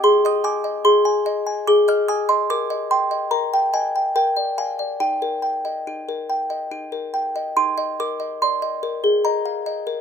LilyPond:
\new Staff \with { instrumentName = "Music box" } { \time 3/4 \key ees \major \tempo 4 = 72 << { c'''16 ees'''16 d'''8 c'''4 d'''16 f'''16 ees'''16 c'''16 | d'''8 c'''8 bes''16 g''16 aes''8 g''8 f''8 | g''2 r4 | c'''8 d'''8 c'''4 bes''4 | } \\ { aes'16 ees''16 aes''16 ees''16 aes'16 aes''16 ees''16 aes''16 aes'16 ees''16 aes''16 ees''16 | bes'16 ees''16 g''16 ees''16 bes'8 ees''16 g''16 bes'16 d''16 aes''16 d''16 | ees'16 bes'16 g''16 ees''16 ees'16 bes'16 g''16 ees''16 ees'16 bes'16 g''16 ees''16 | ees'16 ees''16 bes'16 ees''16 d''16 ees''16 bes'16 aes'16 ees''16 f''16 ees''16 bes'16 | } >> }